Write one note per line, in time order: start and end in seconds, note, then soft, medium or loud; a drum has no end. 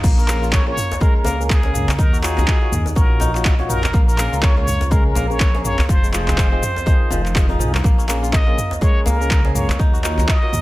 0.00 0.74 A#1 loud
0.00 0.27 A#3 loud
0.00 0.24 C4 medium
0.00 1.31 D#4 medium
0.00 0.42 F4 medium
0.00 kick loud
0.00 crash medium
0.04 shaker medium
0.18 1.92 C#4 medium
0.18 0.50 A#4 loud
0.18 shaker soft
0.28 1.25 A#3 loud
0.28 0.63 C#4 medium
0.28 0.64 G#4 medium
0.28 0.64 A#4 medium
0.28 clap medium
0.28 shaker medium
0.42 0.66 F4 medium
0.42 shaker soft
0.52 1.49 A#4 medium
0.52 0.66 C#5 loud
0.52 kick loud
0.52 clap loud
0.52 shaker medium
0.67 0.79 C#4 medium
0.67 2.19 F4 medium
0.67 0.79 G#4 medium
0.67 0.79 A#4 loud
0.67 1.03 C#5 loud
0.77 mid tom medium
0.77 shaker medium
0.92 djembe slap medium
0.92 shaker soft
1.00 2.04 G#3 loud
1.00 1.37 C#4 medium
1.00 1.37 G#4 medium
1.00 1.37 A#4 medium
1.00 1.16 A#4 loud
1.00 kick loud
1.00 djembe tone medium
1.00 shaker medium
1.17 1.52 A#4 loud
1.24 2.00 C#2 medium
1.24 1.73 A#3 loud
1.24 djembe slap medium
1.24 djembe tone medium
1.24 shaker medium
1.40 1.60 C#4 medium
1.40 1.60 G#4 medium
1.40 1.60 A#4 loud
1.40 shaker soft
1.50 2.00 G#4 loud
1.50 2.37 A#4 medium
1.50 kick loud
1.50 clap loud
1.50 shaker medium
1.63 1.87 C#4 medium
1.63 3.00 G#4 medium
1.63 1.87 G#4 medium
1.63 1.87 A#4 loud
1.63 djembe slap medium
1.74 3.67 A#3 medium
1.74 mid tom medium
1.74 shaker medium
1.88 clap medium
1.88 djembe tone medium
1.88 djembe bass medium
1.88 shaker soft
1.98 2.45 D#2 medium
1.98 2.22 D#4 loud
1.98 2.24 A#4 loud
1.98 kick loud
1.98 shaker medium
2.13 3.59 F#4 medium
2.13 shaker soft
2.23 3.20 D#4 loud
2.23 2.59 F4 medium
2.23 2.59 F#4 medium
2.23 2.95 G#4 loud
2.23 2.59 C#5 medium
2.23 clap medium
2.23 shaker loud
2.37 2.61 A#4 medium
2.37 clap soft
2.37 djembe bass medium
2.37 shaker soft
2.47 3.44 D#5 medium
2.47 kick loud
2.47 clap loud
2.47 shaker medium
2.62 2.75 F4 medium
2.62 2.75 F#4 medium
2.62 3.89 A#4 medium
2.62 2.75 C#5 loud
2.72 2.93 D#2 medium
2.72 mid tom medium
2.72 shaker loud
2.86 djembe slap medium
2.86 shaker soft
2.95 3.91 A#1 medium
2.95 4.08 C#4 loud
2.95 3.32 F4 medium
2.95 3.32 F#4 medium
2.95 3.41 A#4 medium
2.95 3.32 C#5 medium
2.95 kick loud
2.95 djembe tone medium
2.95 shaker medium
3.20 3.69 D#4 loud
3.20 djembe slap medium
3.20 djembe tone loud
3.20 shaker loud
3.35 3.55 F4 medium
3.35 3.55 F#4 medium
3.35 3.55 C#5 loud
3.35 clap soft
3.35 shaker soft
3.45 4.52 D#5 medium
3.45 kick loud
3.45 clap loud
3.45 shaker medium
3.59 3.82 F4 medium
3.59 3.82 F#4 medium
3.59 4.74 C#5 medium
3.59 3.82 C#5 loud
3.59 djembe tone medium
3.69 5.31 D#4 medium
3.69 4.06 A#4 loud
3.69 mid tom medium
3.69 shaker medium
3.84 clap medium
3.84 djembe tone medium
3.84 shaker soft
3.93 4.29 A#1 loud
3.93 4.17 A#3 loud
3.93 kick loud
3.93 shaker medium
4.08 5.82 C#4 medium
4.08 4.44 A#4 loud
4.08 shaker soft
4.18 5.15 A#3 loud
4.18 4.54 C#4 medium
4.18 4.54 G#4 medium
4.18 4.54 A#4 medium
4.18 clap medium
4.18 shaker loud
4.32 5.13 C#2 loud
4.32 4.56 F4 medium
4.32 shaker soft
4.42 5.40 A#4 medium
4.42 4.57 C#5 loud
4.42 kick loud
4.42 clap loud
4.42 shaker medium
4.57 4.70 C#4 medium
4.57 6.08 F4 medium
4.57 4.70 G#4 medium
4.57 4.70 A#4 loud
4.57 4.93 C#5 loud
4.67 mid tom medium
4.67 shaker loud
4.81 djembe slap medium
4.81 shaker soft
4.91 5.94 G#3 loud
4.91 5.27 C#4 medium
4.91 5.27 G#4 medium
4.91 5.27 A#4 medium
4.91 5.06 A#4 loud
4.91 kick loud
4.91 djembe tone medium
4.91 shaker medium
5.06 5.33 A#4 loud
5.15 5.75 A#1 medium
5.15 5.64 A#3 loud
5.15 djembe slap medium
5.15 djembe tone medium
5.15 shaker loud
5.30 5.50 C#4 medium
5.30 5.50 G#4 medium
5.30 5.50 A#4 loud
5.30 5.64 C#5 loud
5.30 shaker soft
5.40 6.67 A#4 medium
5.40 kick loud
5.40 clap loud
5.40 shaker medium
5.54 5.77 C#4 medium
5.54 6.91 G#4 medium
5.54 5.77 G#4 medium
5.54 5.77 A#4 loud
5.54 djembe slap medium
5.64 7.57 A#3 medium
5.64 5.91 C#5 loud
5.64 mid tom medium
5.64 shaker loud
5.78 clap medium
5.78 djembe tone medium
5.78 djembe bass medium
5.78 shaker soft
5.89 6.59 F1 loud
5.89 6.12 F3 loud
5.89 6.13 C5 loud
5.89 kick loud
5.89 shaker medium
6.03 6.92 G#3 medium
6.03 shaker soft
6.13 6.92 F3 loud
6.13 6.49 F4 medium
6.13 6.49 G#4 medium
6.13 7.56 C5 loud
6.13 6.49 D#5 medium
6.13 clap medium
6.13 shaker loud
6.28 6.52 C4 medium
6.28 clap medium
6.28 djembe bass medium
6.28 shaker soft
6.38 7.34 F4 medium
6.38 kick loud
6.38 clap loud
6.38 shaker medium
6.52 8.04 C4 medium
6.52 6.65 F4 medium
6.52 6.65 G#4 medium
6.52 6.65 D#5 loud
6.62 mid tom medium
6.62 shaker loud
6.76 djembe slap medium
6.76 shaker soft
6.86 7.89 D#3 loud
6.86 7.22 F4 medium
6.86 7.22 G#4 medium
6.86 7.22 D#5 medium
6.86 kick loud
6.86 djembe tone medium
6.86 shaker medium
7.10 7.61 F1 medium
7.10 7.58 F3 loud
7.10 djembe slap medium
7.10 djembe tone loud
7.10 shaker medium
7.26 clap soft
7.26 shaker soft
7.35 8.22 F4 medium
7.35 7.46 F4 medium
7.35 7.46 G#4 medium
7.35 7.46 D#5 loud
7.35 kick loud
7.35 clap loud
7.35 shaker medium
7.49 9.12 D#4 medium
7.49 7.73 F4 medium
7.49 7.73 G#4 medium
7.49 7.73 D#5 loud
7.49 djembe tone loud
7.59 7.81 C2 medium
7.59 7.89 F3 medium
7.59 mid tom medium
7.59 shaker loud
7.75 clap medium
7.75 djembe tone medium
7.75 shaker soft
7.84 8.55 A#1 loud
7.84 8.08 A#3 loud
7.84 kick loud
7.84 shaker medium
7.98 9.72 C#4 medium
7.98 shaker soft
8.08 9.06 A#3 loud
8.08 8.44 C#4 medium
8.08 8.44 G#4 medium
8.08 8.44 A#4 medium
8.08 clap medium
8.08 shaker medium
8.23 8.46 F4 medium
8.23 shaker soft
8.32 9.30 A#4 medium
8.32 8.83 D#5 loud
8.32 kick loud
8.32 clap loud
8.32 shaker medium
8.47 8.60 C#4 medium
8.47 9.99 F4 medium
8.47 8.60 G#4 medium
8.47 8.60 A#4 loud
8.58 mid tom medium
8.58 shaker medium
8.71 djembe slap medium
8.71 shaker soft
8.81 9.84 G#3 loud
8.81 9.17 C#4 medium
8.81 9.17 G#4 medium
8.81 9.17 A#4 medium
8.81 9.06 C#5 loud
8.81 kick loud
8.81 djembe tone medium
8.81 shaker medium
9.06 9.81 C#2 medium
9.06 9.54 A#3 loud
9.06 9.56 A#4 loud
9.06 djembe slap medium
9.06 djembe tone loud
9.06 shaker medium
9.21 9.41 C#4 medium
9.21 9.41 G#4 medium
9.21 9.41 A#4 loud
9.21 shaker soft
9.30 10.17 A#4 medium
9.30 kick loud
9.30 clap loud
9.30 shaker medium
9.45 9.68 C#4 medium
9.45 10.62 G#4 medium
9.45 9.68 G#4 medium
9.45 9.68 A#4 loud
9.45 djembe slap medium
9.55 10.62 A#3 medium
9.55 9.79 C#5 medium
9.55 mid tom medium
9.55 shaker medium
9.69 clap medium
9.69 djembe tone medium
9.69 djembe bass medium
9.69 shaker soft
9.79 10.25 D#2 medium
9.79 10.03 D#4 loud
9.79 kick loud
9.79 shaker medium
9.93 10.62 F#4 medium
9.93 shaker soft
10.04 10.62 D#4 loud
10.04 10.39 F4 medium
10.04 10.39 F#4 medium
10.04 10.39 C#5 medium
10.04 clap medium
10.04 shaker medium
10.18 10.42 A#4 medium
10.18 clap soft
10.18 djembe bass medium
10.18 shaker soft
10.28 10.62 D#5 medium
10.28 10.62 D#5 loud
10.28 kick loud
10.28 clap loud
10.28 shaker medium
10.43 10.55 F4 medium
10.43 10.55 F#4 medium
10.43 10.62 A#4 medium
10.43 10.55 C#5 loud
10.52 10.62 D#2 medium
10.52 mid tom medium
10.52 shaker medium